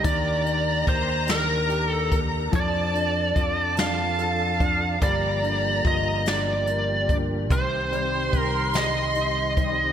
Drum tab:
HH |xxxxxx|xxxxxx|xxxxxx|xxxxxx|
SD |---o--|---o--|---o--|---o--|
BD |o-o--o|o-o--o|o-o--o|o-o--o|